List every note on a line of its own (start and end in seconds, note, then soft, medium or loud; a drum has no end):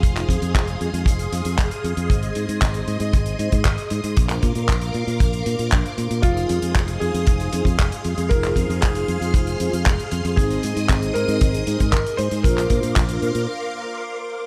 0.00 1.29 D#4 medium
0.00 1.29 F4 medium
0.00 4.13 G#4 medium
0.00 1.29 G#4 medium
0.00 1.29 C5 medium
0.00 2.06 F5 medium
0.00 4.13 C6 medium
0.00 4.13 D#6 medium
0.00 kick loud
0.00 closed hi-hat medium
0.16 clap soft
0.16 closed hi-hat soft
0.29 0.39 F2 medium
0.29 kick medium
0.29 closed hi-hat medium
0.42 0.52 F2 medium
0.42 closed hi-hat medium
0.55 0.76 F1 medium
0.55 kick loud
0.55 clap loud
0.55 closed hi-hat medium
0.67 closed hi-hat medium
0.81 0.91 F2 medium
0.81 closed hi-hat medium
0.94 1.04 F2 medium
0.94 closed hi-hat medium
1.06 1.27 F1 medium
1.06 kick loud
1.06 closed hi-hat loud
1.19 closed hi-hat medium
1.32 1.43 F2 medium
1.32 1.47 D#4 medium
1.32 1.47 F4 medium
1.32 1.47 G#4 medium
1.32 1.47 C5 medium
1.32 closed hi-hat medium
1.45 1.56 F2 medium
1.45 closed hi-hat medium
1.58 1.69 F1 medium
1.58 kick loud
1.58 clap loud
1.58 closed hi-hat medium
1.71 closed hi-hat medium
1.84 1.94 F2 medium
1.84 closed hi-hat medium
1.97 2.07 F2 medium
1.97 closed hi-hat medium
2.10 2.31 G#1 medium
2.10 3.36 C4 medium
2.10 3.36 D#4 medium
2.10 3.36 G#4 medium
2.10 3.36 C5 medium
2.10 4.15 D#5 medium
2.10 kick loud
2.10 closed hi-hat medium
2.23 closed hi-hat medium
2.35 2.46 G#2 medium
2.35 closed hi-hat medium
2.49 2.59 G#2 medium
2.49 closed hi-hat medium
2.61 2.82 G#1 medium
2.61 kick loud
2.61 clap loud
2.61 closed hi-hat loud
2.74 closed hi-hat medium
2.88 2.98 G#2 loud
2.88 closed hi-hat medium
3.00 3.11 G#2 loud
3.00 closed hi-hat medium
3.13 3.34 G#1 loud
3.13 kick loud
3.13 closed hi-hat medium
3.26 closed hi-hat medium
3.39 3.50 G#2 medium
3.39 3.54 C4 medium
3.39 3.54 D#4 medium
3.39 3.54 G#4 medium
3.39 3.54 C5 medium
3.39 closed hi-hat medium
3.52 3.63 G#2 loud
3.52 kick medium
3.52 closed hi-hat medium
3.65 3.76 G#1 loud
3.65 kick loud
3.65 clap loud
3.65 closed hi-hat medium
3.78 closed hi-hat medium
3.90 4.01 G#2 medium
3.90 closed hi-hat medium
4.04 4.14 G#2 medium
4.04 closed hi-hat medium
4.17 4.38 A#1 medium
4.17 5.43 D4 medium
4.17 5.43 F4 medium
4.17 5.43 A#4 medium
4.17 6.22 A#4 medium
4.17 5.43 C5 medium
4.17 6.22 F5 medium
4.17 12.41 C6 medium
4.17 6.22 D6 medium
4.17 kick loud
4.17 closed hi-hat medium
4.29 clap soft
4.29 closed hi-hat medium
4.43 4.53 A#2 medium
4.43 kick medium
4.43 closed hi-hat medium
4.55 4.66 A#2 medium
4.55 closed hi-hat medium
4.69 4.89 A#1 medium
4.69 kick loud
4.69 clap loud
4.69 closed hi-hat medium
4.81 closed hi-hat medium
4.94 5.05 A#2 medium
4.94 closed hi-hat soft
5.07 5.18 A#2 medium
5.07 closed hi-hat medium
5.20 5.41 A#1 medium
5.20 kick loud
5.20 closed hi-hat medium
5.33 closed hi-hat medium
5.46 5.57 A#2 loud
5.46 5.56 D4 medium
5.46 5.56 F4 medium
5.46 5.56 A#4 medium
5.46 5.56 D5 loud
5.46 closed hi-hat medium
5.59 5.70 A#2 medium
5.59 6.21 D4 medium
5.59 6.21 F4 medium
5.59 6.21 A#4 medium
5.59 6.21 C5 medium
5.59 closed hi-hat medium
5.72 5.83 A#1 medium
5.72 kick loud
5.72 clap loud
5.72 closed hi-hat medium
5.86 closed hi-hat soft
5.98 6.08 A#2 loud
5.98 closed hi-hat medium
6.11 6.21 A#2 medium
6.11 closed hi-hat medium
6.22 6.44 F1 loud
6.22 7.50 D#4 medium
6.22 6.71 F4 loud
6.22 7.50 F4 medium
6.22 12.40 G#4 medium
6.22 7.50 G#4 medium
6.22 7.50 C5 medium
6.22 10.34 F5 medium
6.22 8.28 D#6 medium
6.22 kick loud
6.22 closed hi-hat medium
6.37 closed hi-hat medium
6.49 6.60 F2 medium
6.49 closed hi-hat medium
6.62 6.73 F2 medium
6.62 closed hi-hat medium
6.75 6.96 F1 medium
6.75 kick loud
6.75 clap loud
6.75 closed hi-hat medium
6.88 closed hi-hat medium
7.00 7.12 F2 medium
7.00 8.26 G#4 medium
7.00 closed hi-hat soft
7.14 7.25 F2 medium
7.14 closed hi-hat medium
7.27 7.48 F1 loud
7.27 kick loud
7.27 closed hi-hat medium
7.40 closed hi-hat medium
7.53 7.63 F2 medium
7.53 7.67 D#4 medium
7.53 7.67 F4 medium
7.53 7.67 G#4 medium
7.53 7.67 C5 medium
7.53 closed hi-hat medium
7.65 7.76 F2 medium
7.65 kick medium
7.65 closed hi-hat medium
7.79 7.90 F1 loud
7.79 kick loud
7.79 clap loud
7.79 closed hi-hat medium
7.92 closed hi-hat medium
8.04 8.15 F2 medium
8.04 closed hi-hat medium
8.18 8.28 F2 medium
8.18 closed hi-hat medium
8.29 8.52 F1 medium
8.29 9.57 D#4 medium
8.29 9.57 F4 medium
8.29 9.57 G#4 medium
8.29 8.83 A#4 loud
8.29 9.57 C5 medium
8.29 10.35 F6 medium
8.29 kick loud
8.29 closed hi-hat medium
8.43 clap soft
8.43 closed hi-hat medium
8.56 8.67 F2 medium
8.56 kick medium
8.56 closed hi-hat medium
8.70 8.80 F2 medium
8.70 closed hi-hat medium
8.81 9.04 F1 medium
8.81 10.07 G#4 medium
8.81 kick loud
8.81 clap loud
8.81 closed hi-hat medium
8.95 closed hi-hat medium
9.08 9.19 F2 loud
9.08 closed hi-hat medium
9.21 9.32 F2 medium
9.21 closed hi-hat soft
9.34 9.55 F1 medium
9.34 kick loud
9.34 closed hi-hat loud
9.47 closed hi-hat medium
9.60 9.70 F2 medium
9.60 9.74 D#4 medium
9.60 9.74 F4 medium
9.60 9.74 G#4 medium
9.60 9.74 C5 loud
9.60 closed hi-hat medium
9.73 9.83 F2 medium
9.73 closed hi-hat medium
9.86 9.96 F1 medium
9.86 kick loud
9.86 clap loud
9.86 closed hi-hat medium
9.99 closed hi-hat medium
10.11 10.22 F2 medium
10.11 closed hi-hat medium
10.25 10.35 F2 loud
10.25 closed hi-hat medium
10.36 10.58 G#1 loud
10.36 11.64 C4 medium
10.36 11.64 D#4 medium
10.36 11.17 G#4 medium
10.36 11.64 G#4 medium
10.36 11.64 C5 medium
10.36 12.42 D#5 medium
10.36 12.42 D#6 medium
10.36 kick loud
10.36 closed hi-hat loud
10.50 closed hi-hat medium
10.63 10.74 G#2 medium
10.63 closed hi-hat medium
10.77 10.87 G#2 medium
10.77 closed hi-hat medium
10.89 11.10 G#1 medium
10.89 kick loud
10.89 clap loud
10.89 closed hi-hat loud
11.02 closed hi-hat medium
11.14 11.26 G#2 medium
11.14 11.90 A#4 loud
11.14 closed hi-hat medium
11.28 11.39 G#2 loud
11.28 closed hi-hat soft
11.41 11.62 G#1 loud
11.41 kick loud
11.41 closed hi-hat medium
11.54 closed hi-hat medium
11.67 11.77 G#2 medium
11.67 11.81 C4 medium
11.67 11.81 D#4 medium
11.67 11.81 G#4 medium
11.67 11.81 C5 medium
11.67 closed hi-hat medium
11.80 11.90 G#2 loud
11.80 kick medium
11.80 closed hi-hat medium
11.91 12.03 G#1 loud
11.91 12.16 A#4 loud
11.91 kick loud
11.91 clap loud
11.91 closed hi-hat loud
12.06 closed hi-hat medium
12.17 12.29 G#2 medium
12.17 12.45 C5 loud
12.17 closed hi-hat medium
12.31 12.42 G#2 medium
12.31 closed hi-hat medium
12.43 12.65 A#1 loud
12.43 13.48 D4 medium
12.43 13.48 F4 medium
12.43 13.43 A#4 loud
12.43 13.48 A#4 medium
12.43 14.46 A#4 medium
12.43 13.48 C5 medium
12.43 14.46 F5 medium
12.43 14.46 C6 medium
12.43 14.46 D6 medium
12.43 kick loud
12.43 closed hi-hat loud
12.58 clap soft
12.58 closed hi-hat medium
12.70 12.81 A#2 medium
12.70 kick medium
12.70 closed hi-hat medium
12.83 12.94 A#2 medium
12.83 closed hi-hat medium
12.96 13.17 A#1 medium
12.96 kick loud
12.96 clap loud
12.96 closed hi-hat loud
13.09 closed hi-hat medium
13.22 13.33 A#2 loud
13.22 closed hi-hat soft
13.35 13.45 A#2 medium
13.35 closed hi-hat medium